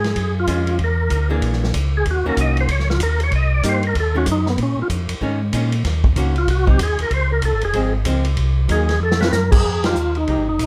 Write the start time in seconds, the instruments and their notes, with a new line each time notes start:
Already playing: tonewheel organ G#2 G#4
0.04 snare, ride
0.16 tonewheel organ F#2, kick, ride
0.40 tonewheel organ F4
0.47 tonewheel organ F2, hollow-body jazz guitar G#3 C#4 F4, kick, hi-hat pedal, ride
0.67 ride
0.79 tonewheel organ E2, kick, ride
0.84 tonewheel organ A#4
1.10 tonewheel organ D2, kick, hi-hat pedal, ride
1.30 hollow-body jazz guitar E3 A#3 D4 G#4
1.42 tonewheel organ A#1, kick, ride
1.53 snare
1.64 snare
1.74 tonewheel organ C#2, kick, hi-hat pedal, ride
1.97 tonewheel organ G#4
2.06 tonewheel organ D#2, kick, ride
2.11 tonewheel organ F#4
2.25 tonewheel organ D#2 A#4, hollow-body jazz guitar D#3 A#3 C#4 F#4
2.37 tonewheel organ C2 D#5, kick, hi-hat pedal, ride
2.57 tonewheel organ C5, ride
2.68 tonewheel organ C#2 C#5, kick, ride
2.79 snare
2.90 tonewheel organ F4, snare
3.00 tonewheel organ D#2 A#4, kick, hi-hat pedal, ride
3.20 tonewheel organ C#5, ride
3.31 tonewheel organ C2, kick, ride
3.35 tonewheel organ D#5
3.54 tonewheel organ D5
3.63 tonewheel organ G2, hollow-body jazz guitar A#3 D#4 G4, kick, hi-hat pedal, ride
3.68 tonewheel organ C5
3.83 ride
3.87 tonewheel organ A#4
3.95 tonewheel organ D#2, kick, ride
4.00 tonewheel organ A4
4.15 hollow-body jazz guitar D#3 A3 C#4, tonewheel organ F#4
4.26 tonewheel organ F#2, kick, hi-hat pedal, ride
4.31 tonewheel organ D#4
4.46 tonewheel organ B3, snare
4.58 tonewheel organ A#2, kick, ride
4.63 tonewheel organ C#4
4.77 tonewheel organ A#2
4.82 tonewheel organ F4
4.89 tonewheel organ F2, kick, hi-hat pedal, ride
5.08 tonewheel organ F2, ride
5.21 tonewheel organ G#2, hollow-body jazz guitar D#3 G#3 C#4, kick
5.52 tonewheel organ A#2, hollow-body jazz guitar D#3 G#3 C#4, kick, hi-hat pedal, ride
5.72 ride
5.84 tonewheel organ D#2, kick, snare, ride
6.04 kick
6.16 tonewheel organ C#2, hollow-body jazz guitar D#3 A#3 C#4 F#4, kick, hi-hat pedal, ride
6.36 tonewheel organ F4, ride
6.47 tonewheel organ C2 F#4, kick, ride
6.66 hollow-body jazz guitar F#3 C4 D#4, tonewheel organ G4, kick
6.79 tonewheel organ D#2, kick, hi-hat pedal, ride
6.83 tonewheel organ G#4
6.99 tonewheel organ D#2 A#4, ride
7.11 tonewheel organ C#2 C5, kick, ride
7.32 tonewheel organ A#4
7.42 tonewheel organ C2 A4, kick, hi-hat pedal, ride
7.52 tonewheel organ G#1
7.61 tonewheel organ F1 G#4, ride
7.73 tonewheel organ G#1, hollow-body jazz guitar F3 G#3 C4, kick, ride
8.05 tonewheel organ C#2, hollow-body jazz guitar F3 G#3 C4, kick, hi-hat pedal, ride
8.25 ride
8.37 tonewheel organ C2, kick, ride
8.68 tonewheel organ D#2 G#4, hollow-body jazz guitar F#3 A#3 D#4, kick, hi-hat pedal, ride
8.89 snare, ride
9.00 tonewheel organ F2 A4
9.11 snare
9.20 hollow-body jazz guitar D#3 A3 C4, tonewheel organ F4 B4, snare
9.32 tonewheel organ F#2 A#4, snare, hi-hat pedal
9.52 tonewheel organ G#4, kick, crash
9.64 tonewheel organ F2, kick
9.84 hollow-body jazz guitar F3 G#3 D#4 G4, tonewheel organ F4, snare, ride
9.95 tonewheel organ D#2, hi-hat pedal
10.15 tonewheel organ D#4, ride
10.27 tonewheel organ C2, hollow-body jazz guitar F3 G#3 D#4 G4, kick, ride
10.38 tonewheel organ G#1
10.49 tonewheel organ F1 D#4
10.59 tonewheel organ A#1, kick, hi-hat pedal, ride